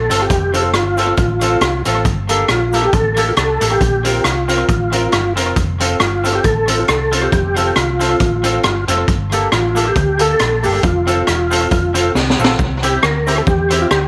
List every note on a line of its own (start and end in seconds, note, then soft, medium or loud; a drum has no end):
0.00 0.22 A4 loud
0.10 0.27 G1 medium
0.10 0.24 C4 medium
0.10 0.25 F4 medium
0.10 0.25 A4 loud
0.10 0.25 A4 medium
0.10 closed hi-hat medium
0.10 cabasa medium
0.22 0.54 G4 loud
0.30 0.74 F1 loud
0.30 kick loud
0.30 closed hi-hat medium
0.30 cabasa medium
0.54 0.68 C4 loud
0.54 0.68 C4 medium
0.54 0.69 F4 medium
0.54 0.64 G4 medium
0.54 0.69 A4 loud
0.54 0.69 A4 medium
0.54 closed hi-hat medium
0.54 cabasa medium
0.74 1.11 G1 medium
0.74 1.82 F4 medium
0.74 cross-stick loud
0.74 closed hi-hat medium
0.74 cabasa medium
0.97 1.12 C4 medium
0.97 1.12 F4 medium
0.97 1.13 F4 medium
0.97 1.13 A4 medium
0.97 1.13 A4 loud
0.97 closed hi-hat medium
0.97 cabasa medium
1.17 1.55 A1 loud
1.17 muted clean electric guitar stroke soft
1.17 kick loud
1.17 closed hi-hat medium
1.17 cabasa soft
1.41 1.56 C4 loud
1.41 1.56 C4 medium
1.41 1.56 F4 loud
1.41 1.57 F4 loud
1.41 1.57 A4 loud
1.41 1.57 A4 medium
1.41 closed hi-hat medium
1.41 cabasa medium
1.61 1.82 C2 loud
1.61 cross-stick loud
1.61 closed hi-hat medium
1.61 cabasa medium
1.85 2.02 A1 medium
1.85 2.00 C4 medium
1.85 2.00 F4 medium
1.85 2.01 F4 medium
1.85 2.00 A4 loud
1.85 2.01 A4 medium
1.85 closed hi-hat medium
1.85 cabasa medium
2.05 2.42 G1 loud
2.05 kick loud
2.05 closed hi-hat medium
2.05 cabasa medium
2.29 2.44 A#3 loud
2.29 2.44 A#3 medium
2.29 2.44 D4 medium
2.29 2.44 G4 medium
2.29 2.44 A4 loud
2.29 2.44 A4 medium
2.29 closed hi-hat loud
2.29 cabasa medium
2.48 2.87 A#1 medium
2.48 2.82 F4 medium
2.48 cross-stick loud
2.48 closed hi-hat medium
2.48 cabasa medium
2.73 2.87 A#3 medium
2.73 2.88 A#3 medium
2.73 2.89 D4 medium
2.73 2.88 G4 medium
2.73 2.88 A4 medium
2.73 2.89 A4 loud
2.73 closed hi-hat medium
2.73 cabasa medium
2.85 2.93 G4 loud
2.93 3.30 A1 medium
2.93 3.29 A4 loud
2.93 muted clean electric guitar stroke soft
2.93 kick loud
2.93 closed hi-hat medium
2.93 cabasa soft
3.17 3.31 A#3 medium
3.17 3.32 A#3 loud
3.17 3.32 D4 medium
3.17 3.32 G4 medium
3.17 3.32 A4 loud
3.17 closed hi-hat medium
3.17 cabasa medium
3.29 3.33 F4 medium
3.36 3.58 C2 loud
3.36 3.70 A4 loud
3.36 cross-stick loud
3.36 closed hi-hat medium
3.36 cabasa medium
3.61 3.78 A1 loud
3.61 3.75 A#3 medium
3.61 3.76 A#3 medium
3.61 3.76 D4 medium
3.61 3.76 G4 medium
3.61 3.76 A4 medium
3.61 3.76 A4 loud
3.61 closed hi-hat loud
3.61 cabasa medium
3.72 4.05 G4 loud
3.81 4.18 A#1 loud
3.81 kick loud
3.81 closed hi-hat medium
3.81 cabasa soft
4.05 4.19 C4 medium
4.05 4.20 F4 medium
4.05 4.24 G4 medium
4.05 4.20 A#4 loud
4.05 4.20 A#4 medium
4.05 closed hi-hat medium
4.05 cabasa medium
4.24 4.62 C2 medium
4.24 5.33 F4 medium
4.24 cross-stick loud
4.24 closed hi-hat medium
4.24 cabasa medium
4.48 4.63 C4 medium
4.48 4.64 F4 medium
4.48 4.64 A#4 medium
4.48 closed hi-hat medium
4.48 cabasa medium
4.69 5.06 A1 medium
4.69 muted clean electric guitar stroke soft
4.69 kick loud
4.69 closed hi-hat medium
4.69 cabasa soft
4.92 5.07 C4 medium
4.92 5.07 F4 medium
4.92 5.08 A#4 medium
4.92 5.08 A#4 loud
4.92 closed hi-hat loud
4.92 cabasa medium
5.12 5.37 G1 medium
5.12 cross-stick medium
5.12 closed hi-hat medium
5.12 cabasa medium
5.36 5.54 F1 medium
5.36 5.51 C4 medium
5.36 5.51 F4 loud
5.36 5.51 F4 medium
5.36 5.51 A#4 medium
5.36 5.52 A#4 loud
5.36 closed hi-hat medium
5.36 cabasa medium
5.56 5.94 F1 medium
5.56 kick loud
5.56 closed hi-hat medium
5.56 cabasa medium
5.80 5.95 C4 medium
5.80 5.95 F4 medium
5.80 5.96 A4 medium
5.80 5.96 A4 loud
5.80 closed hi-hat loud
5.80 cabasa medium
6.00 6.38 G1 medium
6.00 6.32 F4 medium
6.00 cross-stick loud
6.00 closed hi-hat medium
6.00 cabasa medium
6.24 6.39 C4 medium
6.24 6.39 F4 loud
6.24 6.39 F4 medium
6.24 6.39 A4 loud
6.24 6.40 A4 medium
6.24 closed hi-hat medium
6.24 cabasa medium
6.35 6.45 G4 medium
6.43 6.82 A1 medium
6.43 6.80 A4 loud
6.43 muted clean electric guitar stroke soft
6.43 kick loud
6.43 closed hi-hat medium
6.43 cabasa soft
6.68 6.83 C4 medium
6.68 6.83 C4 loud
6.68 6.83 F4 medium
6.68 6.83 F4 loud
6.68 6.83 A4 loud
6.68 6.83 A4 medium
6.68 closed hi-hat loud
6.68 cabasa medium
6.79 6.88 F4 medium
6.88 7.26 C2 medium
6.88 7.21 A4 loud
6.88 cross-stick loud
6.88 closed hi-hat medium
6.88 cabasa medium
7.12 7.26 C4 medium
7.12 7.27 C4 medium
7.12 7.27 F4 medium
7.12 7.27 A4 medium
7.12 7.28 A4 loud
7.12 closed hi-hat loud
7.12 cabasa medium
7.23 7.56 G4 loud
7.32 7.69 F1 loud
7.32 kick loud
7.32 closed hi-hat medium
7.32 cabasa medium
7.55 7.70 C4 medium
7.55 7.71 C4 medium
7.55 7.71 F4 medium
7.55 7.77 G4 medium
7.55 7.71 A4 medium
7.55 7.72 A4 medium
7.55 closed hi-hat medium
7.55 cabasa medium
7.76 8.13 C2 medium
7.76 8.85 F4 medium
7.76 cross-stick loud
7.76 closed hi-hat medium
7.76 cabasa medium
8.00 8.14 C4 medium
8.00 8.15 C4 medium
8.00 8.15 F4 loud
8.00 8.15 F4 medium
8.00 8.15 A4 loud
8.00 8.15 A4 medium
8.00 closed hi-hat medium
8.00 cabasa medium
8.20 8.57 A1 loud
8.20 kick loud
8.20 closed hi-hat medium
8.20 cabasa soft
8.44 8.58 C4 medium
8.44 8.58 C4 loud
8.44 8.59 F4 loud
8.44 8.59 F4 medium
8.44 8.59 A4 loud
8.44 8.59 A4 medium
8.44 closed hi-hat loud
8.44 cabasa medium
8.63 8.85 G1 medium
8.63 cross-stick loud
8.63 closed hi-hat medium
8.63 cabasa medium
8.88 9.05 F1 medium
8.88 9.02 C4 medium
8.88 9.03 C4 loud
8.88 9.03 F4 medium
8.88 9.03 A4 loud
8.88 9.03 A4 medium
8.88 closed hi-hat loud
8.88 cabasa medium
9.08 9.45 G1 loud
9.08 kick loud
9.08 closed hi-hat medium
9.08 cabasa medium
9.32 9.46 A#3 medium
9.32 9.47 A#3 medium
9.32 9.47 D4 medium
9.32 9.47 G4 medium
9.32 9.47 A4 loud
9.32 9.47 A4 medium
9.32 closed hi-hat loud
9.32 cabasa medium
9.52 9.89 A1 medium
9.52 9.87 F4 medium
9.52 cross-stick medium
9.52 closed hi-hat medium
9.52 cabasa medium
9.75 9.90 A#3 medium
9.75 9.90 D4 medium
9.75 9.90 G4 medium
9.75 9.91 A4 loud
9.75 9.91 A4 medium
9.75 closed hi-hat medium
9.75 cabasa medium
9.88 10.22 G4 loud
9.95 10.33 D2 medium
9.95 muted clean electric guitar stroke soft
9.95 kick loud
9.95 closed hi-hat medium
9.95 cabasa soft
10.19 10.34 A#3 loud
10.19 10.34 A#3 medium
10.19 10.35 D4 medium
10.19 10.34 G4 medium
10.19 10.35 A4 loud
10.19 10.66 A4 loud
10.19 10.35 A4 loud
10.19 closed hi-hat medium
10.19 cabasa medium
10.39 10.66 A#1 loud
10.39 cross-stick medium
10.39 closed hi-hat medium
10.39 cabasa medium
10.63 10.81 G1 medium
10.63 10.78 A#3 medium
10.63 10.79 D4 medium
10.63 10.78 G4 medium
10.63 10.82 G4 medium
10.63 10.78 A4 loud
10.63 10.79 A4 medium
10.63 open hi-hat medium
10.63 cabasa medium
10.83 11.21 F1 loud
10.83 12.12 F4 medium
10.83 kick loud
10.83 closed hi-hat medium
10.83 cabasa medium
11.07 11.22 C4 loud
11.07 11.22 C4 medium
11.07 11.22 F4 medium
11.07 11.22 A4 loud
11.07 11.22 A4 medium
11.07 closed hi-hat medium
11.07 cabasa medium
11.27 11.65 E1 loud
11.27 cross-stick medium
11.27 closed hi-hat medium
11.27 cabasa medium
11.51 11.66 C4 loud
11.51 11.66 C4 medium
11.51 11.66 F4 loud
11.51 11.66 F4 medium
11.51 11.66 A4 loud
11.51 11.66 A4 medium
11.51 closed hi-hat medium
11.51 cabasa medium
11.71 12.09 F1 medium
11.71 muted clean electric guitar stroke soft
11.71 kick loud
11.71 closed hi-hat medium
11.71 cabasa soft
11.94 12.09 C4 medium
11.94 12.10 F4 medium
11.94 12.10 A4 loud
11.94 12.10 A4 medium
11.94 closed hi-hat loud
11.94 cabasa medium
12.15 12.36 C2 loud
12.15 snare medium
12.15 cabasa medium
12.30 snare medium
12.39 12.56 A#1 medium
12.39 12.54 C4 medium
12.39 12.54 F4 medium
12.39 12.54 A4 loud
12.39 cabasa medium
12.44 snare loud
12.59 12.96 C2 loud
12.59 kick loud
12.59 cabasa medium
12.83 12.97 C4 medium
12.83 12.98 E4 medium
12.83 12.98 G4 loud
12.83 13.04 G4 medium
12.83 12.98 G4 medium
12.83 closed hi-hat medium
12.83 cabasa medium
13.03 13.41 D2 medium
13.03 13.35 A#4 medium
13.03 cross-stick loud
13.03 cabasa medium
13.27 13.41 C4 medium
13.27 13.42 C4 medium
13.27 13.42 E4 medium
13.27 13.42 E4 loud
13.27 13.42 G4 medium
13.27 closed hi-hat medium
13.27 cabasa medium
13.38 13.42 A4 medium
13.46 13.84 E2 medium
13.46 13.79 G4 loud
13.46 muted clean electric guitar stroke soft
13.46 kick loud
13.46 cabasa soft
13.70 13.85 C4 loud
13.70 13.86 E4 medium
13.70 13.86 G4 loud
13.70 13.86 G4 medium
13.70 closed hi-hat loud
13.70 cabasa medium
13.82 13.90 F4 medium
13.91 14.08 D2 medium
13.91 14.08 G4 medium
13.91 cross-stick loud
13.91 cabasa medium